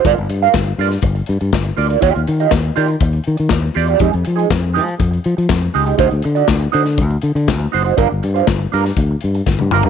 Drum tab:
HH |x-xx-xoxxxxx-xox|xxxx--xxxxxx-xox|xxxx--xxxxxx-xox|xxxx-xxxxxxx-xox|
CP |----x-------x---|----x-------x---|----x-------x---|----x-------x---|
SD |----o--o----o---|----o-------o---|----o-------o---|----o--o----o---|
T1 |----------------|----------------|----------------|----------------|
T2 |----------------|----------------|----------------|----------------|
FT |----------------|----------------|----------------|----------------|
BD |o---o---o---o---|o---o---o---o---|o---o---o---o---|o---o---o---o---|

HH |x-xx-xoxx-xx----|
CP |----x-----------|
SD |----o--o----o---|
T1 |-------------o--|
T2 |--------------o-|
FT |---------------o|
BD |o---o---o---o---|